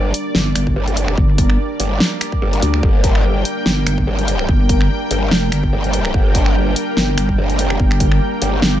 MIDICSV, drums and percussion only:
0, 0, Header, 1, 2, 480
1, 0, Start_track
1, 0, Key_signature, -2, "minor"
1, 0, Tempo, 413793
1, 1363, Time_signature, 4, 2, 24, 8
1, 10208, End_track
2, 0, Start_track
2, 0, Title_t, "Drums"
2, 163, Note_on_c, 9, 42, 83
2, 279, Note_off_c, 9, 42, 0
2, 403, Note_on_c, 9, 38, 125
2, 519, Note_off_c, 9, 38, 0
2, 643, Note_on_c, 9, 26, 74
2, 643, Note_on_c, 9, 42, 83
2, 759, Note_off_c, 9, 26, 0
2, 759, Note_off_c, 9, 42, 0
2, 775, Note_on_c, 9, 36, 65
2, 891, Note_off_c, 9, 36, 0
2, 1015, Note_on_c, 9, 42, 39
2, 1124, Note_off_c, 9, 42, 0
2, 1124, Note_on_c, 9, 42, 80
2, 1240, Note_off_c, 9, 42, 0
2, 1256, Note_on_c, 9, 26, 52
2, 1363, Note_on_c, 9, 36, 124
2, 1372, Note_off_c, 9, 26, 0
2, 1479, Note_off_c, 9, 36, 0
2, 1603, Note_on_c, 9, 36, 113
2, 1604, Note_on_c, 9, 42, 80
2, 1719, Note_off_c, 9, 36, 0
2, 1720, Note_off_c, 9, 42, 0
2, 1735, Note_on_c, 9, 26, 52
2, 1851, Note_off_c, 9, 26, 0
2, 2084, Note_on_c, 9, 42, 81
2, 2200, Note_off_c, 9, 42, 0
2, 2324, Note_on_c, 9, 38, 120
2, 2440, Note_off_c, 9, 38, 0
2, 2564, Note_on_c, 9, 26, 77
2, 2564, Note_on_c, 9, 42, 76
2, 2680, Note_off_c, 9, 26, 0
2, 2680, Note_off_c, 9, 42, 0
2, 2695, Note_on_c, 9, 36, 67
2, 2811, Note_off_c, 9, 36, 0
2, 2936, Note_on_c, 9, 42, 38
2, 3044, Note_off_c, 9, 42, 0
2, 3044, Note_on_c, 9, 42, 77
2, 3160, Note_off_c, 9, 42, 0
2, 3176, Note_on_c, 9, 26, 53
2, 3284, Note_on_c, 9, 36, 120
2, 3292, Note_off_c, 9, 26, 0
2, 3400, Note_off_c, 9, 36, 0
2, 3524, Note_on_c, 9, 36, 110
2, 3524, Note_on_c, 9, 42, 74
2, 3640, Note_off_c, 9, 36, 0
2, 3640, Note_off_c, 9, 42, 0
2, 3656, Note_on_c, 9, 26, 54
2, 3772, Note_off_c, 9, 26, 0
2, 4004, Note_on_c, 9, 42, 77
2, 4120, Note_off_c, 9, 42, 0
2, 4244, Note_on_c, 9, 38, 120
2, 4360, Note_off_c, 9, 38, 0
2, 4484, Note_on_c, 9, 26, 78
2, 4484, Note_on_c, 9, 42, 75
2, 4600, Note_off_c, 9, 26, 0
2, 4600, Note_off_c, 9, 42, 0
2, 4616, Note_on_c, 9, 36, 64
2, 4732, Note_off_c, 9, 36, 0
2, 4856, Note_on_c, 9, 42, 37
2, 4965, Note_off_c, 9, 42, 0
2, 4965, Note_on_c, 9, 42, 76
2, 5081, Note_off_c, 9, 42, 0
2, 5096, Note_on_c, 9, 26, 54
2, 5204, Note_on_c, 9, 36, 119
2, 5212, Note_off_c, 9, 26, 0
2, 5320, Note_off_c, 9, 36, 0
2, 5444, Note_on_c, 9, 36, 105
2, 5444, Note_on_c, 9, 42, 74
2, 5560, Note_off_c, 9, 36, 0
2, 5560, Note_off_c, 9, 42, 0
2, 5576, Note_on_c, 9, 26, 55
2, 5692, Note_off_c, 9, 26, 0
2, 5924, Note_on_c, 9, 42, 78
2, 6040, Note_off_c, 9, 42, 0
2, 6164, Note_on_c, 9, 38, 112
2, 6280, Note_off_c, 9, 38, 0
2, 6404, Note_on_c, 9, 26, 81
2, 6404, Note_on_c, 9, 42, 76
2, 6520, Note_off_c, 9, 26, 0
2, 6520, Note_off_c, 9, 42, 0
2, 6535, Note_on_c, 9, 36, 60
2, 6651, Note_off_c, 9, 36, 0
2, 6776, Note_on_c, 9, 42, 36
2, 6884, Note_off_c, 9, 42, 0
2, 6884, Note_on_c, 9, 42, 75
2, 7000, Note_off_c, 9, 42, 0
2, 7015, Note_on_c, 9, 26, 58
2, 7124, Note_on_c, 9, 36, 114
2, 7131, Note_off_c, 9, 26, 0
2, 7240, Note_off_c, 9, 36, 0
2, 7364, Note_on_c, 9, 36, 104
2, 7364, Note_on_c, 9, 42, 78
2, 7480, Note_off_c, 9, 36, 0
2, 7480, Note_off_c, 9, 42, 0
2, 7495, Note_on_c, 9, 26, 57
2, 7611, Note_off_c, 9, 26, 0
2, 7844, Note_on_c, 9, 42, 78
2, 7960, Note_off_c, 9, 42, 0
2, 8084, Note_on_c, 9, 38, 110
2, 8200, Note_off_c, 9, 38, 0
2, 8324, Note_on_c, 9, 26, 81
2, 8324, Note_on_c, 9, 42, 76
2, 8440, Note_off_c, 9, 26, 0
2, 8440, Note_off_c, 9, 42, 0
2, 8455, Note_on_c, 9, 36, 59
2, 8571, Note_off_c, 9, 36, 0
2, 8695, Note_on_c, 9, 42, 36
2, 8803, Note_off_c, 9, 42, 0
2, 8803, Note_on_c, 9, 42, 77
2, 8919, Note_off_c, 9, 42, 0
2, 8935, Note_on_c, 9, 26, 60
2, 9043, Note_on_c, 9, 36, 117
2, 9051, Note_off_c, 9, 26, 0
2, 9159, Note_off_c, 9, 36, 0
2, 9174, Note_on_c, 9, 26, 67
2, 9283, Note_on_c, 9, 42, 83
2, 9284, Note_on_c, 9, 36, 107
2, 9290, Note_off_c, 9, 26, 0
2, 9399, Note_off_c, 9, 42, 0
2, 9400, Note_off_c, 9, 36, 0
2, 9414, Note_on_c, 9, 26, 57
2, 9530, Note_off_c, 9, 26, 0
2, 9763, Note_on_c, 9, 42, 84
2, 9879, Note_off_c, 9, 42, 0
2, 10003, Note_on_c, 9, 38, 113
2, 10119, Note_off_c, 9, 38, 0
2, 10208, End_track
0, 0, End_of_file